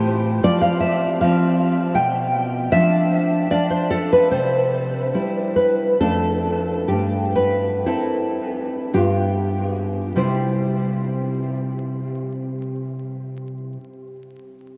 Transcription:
0.00 0.39 A2 medium
0.00 0.39 C5 medium
0.43 1.21 F3 soft
0.43 1.22 C4 medium
0.43 0.61 D5 loud
0.61 0.80 F5 loud
0.80 1.17 E5 medium
1.21 1.91 F3 medium
1.21 1.92 C4 medium
1.21 1.92 F5 medium
1.94 2.69 B2 medium
1.94 2.68 G5 medium
2.72 3.49 F3 medium
2.72 3.50 D4 medium
2.72 3.48 E5 loud
3.50 4.27 F3 soft
3.50 4.27 D4 soft
3.50 3.70 D5 medium
3.70 3.90 C5 medium
3.90 4.11 A4 loud
4.13 4.31 B4 medium
4.31 5.11 C3 medium
4.31 5.52 C5 medium
5.14 5.96 G3 soft
5.14 5.96 E4 soft
5.56 5.98 B4 medium
6.00 6.88 F2 medium
6.00 6.87 A3 soft
6.00 6.87 D4 soft
6.00 6.87 A4 medium
6.88 7.82 G2 soft
6.88 7.34 G4 medium
7.36 7.83 B4 medium
7.86 8.90 C4 soft
7.86 8.90 E4 soft
7.86 8.90 A4 medium
8.93 10.14 G2 soft
8.93 10.14 B3 soft
8.93 10.14 F4 soft
8.93 10.14 G4 medium
10.16 13.76 C3 soft
10.16 13.77 G3 soft
10.16 13.76 E4 soft
10.16 13.77 G4 soft
10.16 13.78 C5 soft

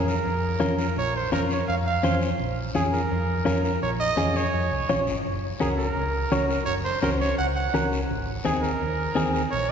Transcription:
0.00 0.18 F2 medium
0.00 0.14 C#4 medium
0.00 0.14 F4 medium
0.00 0.14 A#4 medium
0.08 0.75 A#4 medium
0.08 short guiro medium
0.25 0.54 F2 medium
0.25 high conga soft
0.25 long guiro medium
0.60 0.89 F2 medium
0.60 0.85 C#4 medium
0.60 0.85 F4 medium
0.60 0.86 A#4 medium
0.60 high conga medium
0.60 short guiro medium
0.79 0.96 A#4 medium
0.79 short guiro medium
0.96 1.25 A#1 medium
0.96 1.14 C#5 loud
0.96 high conga soft
0.96 long guiro medium
1.16 1.32 C5 medium
1.32 1.61 F2 medium
1.32 1.57 C#4 medium
1.32 1.57 F4 medium
1.32 1.57 A#4 medium
1.32 1.41 A#4 medium
1.32 high conga medium
1.32 short guiro medium
1.50 1.67 C#5 medium
1.50 short guiro medium
1.68 1.97 F2 medium
1.68 1.76 F5 medium
1.68 high conga soft
1.68 long guiro medium
1.86 2.19 F5 medium
2.03 2.32 F2 medium
2.03 2.28 C#4 medium
2.03 2.29 F4 medium
2.03 2.29 C5 medium
2.03 high conga medium
2.03 short guiro medium
2.22 short guiro medium
2.40 2.68 A#1 medium
2.40 high conga soft
2.40 long guiro medium
2.75 3.04 F2 medium
2.75 3.00 C#4 medium
2.75 3.00 F4 medium
2.75 2.83 G#4 medium
2.75 3.00 G#4 medium
2.75 high conga medium
2.75 short guiro medium
2.93 3.60 A#4 medium
2.93 short guiro medium
3.11 3.40 F2 medium
3.11 high conga soft
3.11 long guiro medium
3.45 3.75 F2 medium
3.45 3.71 C#4 medium
3.45 3.71 F4 medium
3.45 3.71 A#4 medium
3.45 high conga medium
3.45 short guiro medium
3.64 3.81 A#4 medium
3.64 short guiro medium
3.82 4.11 A#1 medium
3.82 3.91 C#5 medium
3.82 high conga soft
3.82 long guiro medium
4.00 4.38 D#5 loud
4.17 4.47 F2 medium
4.17 4.42 C#4 medium
4.17 4.43 F4 medium
4.17 4.43 G#4 medium
4.17 high conga medium
4.17 short guiro medium
4.36 5.07 C#5 medium
4.36 short guiro medium
4.54 4.68 F2 medium
4.54 high conga soft
4.54 long guiro medium
4.71 4.87 C2 medium
4.89 5.05 A#1 medium
4.89 5.14 C#4 medium
4.89 5.14 F4 medium
4.89 5.14 C#5 medium
4.89 high conga medium
4.89 short guiro medium
5.07 5.23 G#1 medium
5.07 short guiro medium
5.25 5.54 F#1 medium
5.25 high conga soft
5.25 long guiro medium
5.60 5.90 C#2 medium
5.60 5.85 C#4 medium
5.60 5.86 F#4 medium
5.60 5.69 G#4 medium
5.60 5.86 A#4 medium
5.60 high conga medium
5.60 short guiro medium
5.77 6.45 A#4 medium
5.77 short guiro medium
5.96 6.24 C#2 medium
5.96 high conga soft
5.96 long guiro medium
6.32 6.60 C#2 medium
6.32 6.57 C#4 medium
6.32 6.57 F#4 medium
6.32 6.57 C#5 medium
6.32 high conga medium
6.32 short guiro medium
6.49 6.65 A#4 medium
6.49 short guiro medium
6.65 6.95 F#1 medium
6.65 6.74 C#5 medium
6.65 high conga soft
6.65 long guiro medium
6.84 7.01 C5 medium
7.02 7.31 C#2 medium
7.02 7.28 C#4 medium
7.02 7.28 F#4 medium
7.02 7.10 A#4 medium
7.02 7.28 C5 medium
7.02 high conga medium
7.02 short guiro medium
7.20 7.37 C#5 medium
7.20 short guiro medium
7.38 7.67 C#2 medium
7.38 7.46 F#5 medium
7.38 high conga soft
7.38 long guiro medium
7.55 7.89 F#5 medium
7.74 8.03 C#2 medium
7.74 7.99 C#4 medium
7.74 7.99 F#4 medium
7.74 7.99 A#4 medium
7.74 high conga medium
7.74 short guiro medium
7.93 short guiro medium
8.10 8.39 G#1 medium
8.10 high conga soft
8.10 long guiro medium
8.45 8.74 D#2 medium
8.45 8.70 C4 medium
8.45 8.70 D#4 medium
8.45 8.71 G#4 medium
8.45 8.54 G#4 medium
8.45 high conga medium
8.45 short guiro medium
8.62 9.30 A#4 medium
8.62 short guiro medium
8.81 9.10 D#2 medium
8.81 high conga soft
8.81 long guiro medium
9.15 9.45 D#2 medium
9.15 9.41 C4 medium
9.15 9.41 D#4 medium
9.15 9.41 G#4 medium
9.15 high conga medium
9.15 short guiro medium
9.34 9.42 A#4 medium
9.34 short guiro medium
9.51 9.72 A#1 medium
9.51 9.71 C#5 loud
9.51 high conga soft
9.51 long guiro medium

